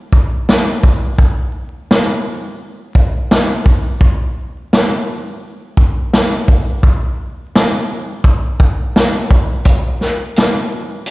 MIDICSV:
0, 0, Header, 1, 2, 480
1, 0, Start_track
1, 0, Tempo, 705882
1, 806, Time_signature, 4, 2, 24, 8
1, 7551, End_track
2, 0, Start_track
2, 0, Title_t, "Drums"
2, 86, Note_on_c, 9, 36, 95
2, 154, Note_off_c, 9, 36, 0
2, 332, Note_on_c, 9, 38, 113
2, 400, Note_off_c, 9, 38, 0
2, 567, Note_on_c, 9, 36, 92
2, 635, Note_off_c, 9, 36, 0
2, 805, Note_on_c, 9, 36, 105
2, 873, Note_off_c, 9, 36, 0
2, 1298, Note_on_c, 9, 38, 118
2, 1366, Note_off_c, 9, 38, 0
2, 2006, Note_on_c, 9, 36, 94
2, 2074, Note_off_c, 9, 36, 0
2, 2252, Note_on_c, 9, 38, 114
2, 2320, Note_off_c, 9, 38, 0
2, 2487, Note_on_c, 9, 36, 90
2, 2555, Note_off_c, 9, 36, 0
2, 2726, Note_on_c, 9, 36, 110
2, 2794, Note_off_c, 9, 36, 0
2, 3216, Note_on_c, 9, 38, 118
2, 3284, Note_off_c, 9, 38, 0
2, 3926, Note_on_c, 9, 36, 96
2, 3994, Note_off_c, 9, 36, 0
2, 4172, Note_on_c, 9, 38, 112
2, 4240, Note_off_c, 9, 38, 0
2, 4407, Note_on_c, 9, 36, 91
2, 4475, Note_off_c, 9, 36, 0
2, 4646, Note_on_c, 9, 36, 112
2, 4714, Note_off_c, 9, 36, 0
2, 5138, Note_on_c, 9, 38, 118
2, 5206, Note_off_c, 9, 38, 0
2, 5604, Note_on_c, 9, 36, 94
2, 5672, Note_off_c, 9, 36, 0
2, 5847, Note_on_c, 9, 36, 97
2, 5915, Note_off_c, 9, 36, 0
2, 6093, Note_on_c, 9, 38, 113
2, 6161, Note_off_c, 9, 38, 0
2, 6328, Note_on_c, 9, 36, 89
2, 6396, Note_off_c, 9, 36, 0
2, 6561, Note_on_c, 9, 42, 91
2, 6566, Note_on_c, 9, 36, 109
2, 6629, Note_off_c, 9, 42, 0
2, 6634, Note_off_c, 9, 36, 0
2, 6805, Note_on_c, 9, 38, 34
2, 6873, Note_off_c, 9, 38, 0
2, 7046, Note_on_c, 9, 42, 74
2, 7058, Note_on_c, 9, 38, 120
2, 7114, Note_off_c, 9, 42, 0
2, 7126, Note_off_c, 9, 38, 0
2, 7521, Note_on_c, 9, 42, 78
2, 7551, Note_off_c, 9, 42, 0
2, 7551, End_track
0, 0, End_of_file